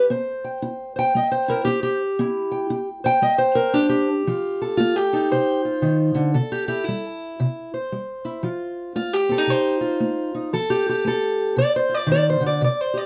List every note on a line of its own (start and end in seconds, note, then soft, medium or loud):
0.10 0.58 C4 medium
0.10 0.95 C5 soft
0.44 0.98 G5 soft
0.62 1.10 E4 medium
0.96 1.16 C5 soft
0.96 1.67 G5 medium
1.15 1.62 G3 medium
1.15 1.31 D#5 medium
1.32 2.01 C5 medium
1.48 1.66 E4 soft
1.48 1.64 A#4 medium
1.65 2.15 E4 medium
1.65 1.82 G4 medium
1.83 2.87 G4 medium
2.19 2.67 C4 medium
2.19 2.69 E4 soft
2.52 3.05 G5 soft
2.70 3.18 E4 medium
3.04 3.22 C5 soft
3.04 3.75 G5 loud
3.22 3.70 G3 medium
3.22 3.38 D#5 medium
3.38 4.08 C5 medium
3.55 3.74 A#4 medium
3.73 4.07 D4 medium
3.73 3.88 G4 medium
3.89 4.95 G4 medium
4.27 4.75 F3 medium
4.27 4.76 F4 medium
4.62 5.12 A4 soft
4.77 5.28 A3 medium
4.77 4.96 F4 medium
4.96 5.63 G4 medium
5.13 6.33 D#4 soft
5.13 5.31 A4 medium
5.31 5.79 C3 medium
5.31 6.34 C5 loud
5.65 6.33 F4 soft
5.82 6.14 D#3 medium
6.15 6.34 D3 medium
6.34 6.83 C3 medium
6.34 7.04 A4 medium
6.52 6.67 G4 medium
6.68 6.83 E4 soft
6.68 6.84 G4 medium
6.84 7.70 E4 medium
6.88 7.36 G3 medium
7.40 7.88 C3 medium
7.74 9.31 C5 soft
7.92 8.40 G3 medium
8.25 8.42 E4 soft
8.43 8.91 F3 medium
8.43 8.96 F4 soft
8.96 9.44 A3 medium
8.96 9.13 F4 medium
9.13 9.80 G4 medium
9.29 9.38 C4 soft
9.29 9.50 A4 medium
9.38 10.33 D#4 soft
9.47 9.96 C3 medium
9.47 10.53 C5 loud
9.81 10.50 F4 soft
10.00 10.48 A3 medium
10.35 10.51 D#4 soft
10.53 11.01 F3 medium
10.53 11.05 A4 medium
10.70 10.87 G4 medium
10.89 11.58 G4 medium
11.05 11.53 A3 medium
11.05 11.58 A4 medium
11.57 12.05 C3 medium
11.57 11.75 D5 loud
11.76 11.94 C5 medium
11.89 12.59 F4 soft
11.94 12.10 D5 loud
12.07 12.40 D#3 medium
12.12 12.28 D5 medium
12.30 12.45 C5 medium
12.40 12.60 D3 medium
12.46 12.62 D5 medium
12.61 13.06 C3 medium
12.61 12.81 D5 medium
12.81 12.97 C5 medium
12.94 13.06 G4 soft
12.94 13.06 D5 medium